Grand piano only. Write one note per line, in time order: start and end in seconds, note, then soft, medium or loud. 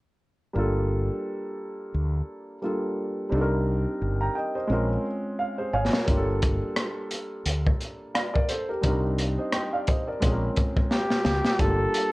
0.53 2.58 G3 medium
0.53 2.58 A#3 medium
0.53 2.59 D4 medium
0.53 2.60 F4 medium
0.59 2.60 A4 medium
2.62 3.28 G3 medium
2.62 3.32 A#3 soft
2.62 3.30 D4 soft
2.62 3.32 F4 soft
2.62 3.33 A4 medium
3.29 4.66 G3 medium
3.29 4.66 C4 medium
3.29 4.67 D4 medium
3.29 4.68 D#4 medium
3.34 3.41 A4 medium
3.41 4.71 A#4 medium
4.20 4.33 G5 soft
4.20 4.35 A#5 medium
4.35 4.53 D#5 soft
4.35 4.54 G5 medium
4.55 4.88 C5 soft
4.55 4.88 D#5 medium
4.67 6.04 G#3 medium
4.67 6.04 C4 medium
4.67 6.05 C#4 medium
4.71 6.06 F4 medium
4.71 5.05 A#4 medium
5.39 5.71 F5 medium
5.58 5.73 G#4 soft
5.58 5.72 C5 medium
5.73 5.91 C#5 medium
5.73 5.92 F5 medium
5.73 6.05 G#5 medium
5.93 6.26 A#4 soft
5.93 6.26 C#5 medium
6.05 8.79 G3 medium
6.05 8.79 A#3 medium
6.05 8.80 D4 medium
6.05 8.80 F4 medium
6.11 6.17 G4 medium
6.17 8.15 A4 medium
8.14 8.32 D5 soft
8.14 8.33 F5 medium
8.34 8.48 A#4 medium
8.34 8.48 D5 medium
8.49 8.68 A4 medium
8.49 8.68 C5 medium
8.69 9.02 G4 soft
8.69 8.85 A#4 medium
8.81 10.18 G3 medium
8.81 10.18 C4 medium
8.81 10.19 D4 medium
8.81 10.20 D#4 medium
8.86 9.19 A#4 medium
9.38 9.52 C5 soft
9.38 9.52 D#5 medium
9.52 9.72 D#5 soft
9.52 9.71 G5 medium
9.73 9.87 D5 soft
9.73 9.87 F5 medium
9.88 10.06 C5 soft
9.88 10.06 D#5 medium
10.07 10.30 A#4 soft
10.07 10.40 D5 medium
10.20 11.56 G#3 medium
10.20 11.57 C4 medium
10.20 11.57 C#4 medium
10.20 11.58 F4 medium
10.25 10.31 G#4 medium
10.32 11.62 A#4 medium
11.58 12.12 G3 medium
11.58 11.67 A3 soft
11.58 12.12 D4 medium
11.58 12.12 F4 medium
11.58 12.12 G4 medium
11.66 12.12 A#3 medium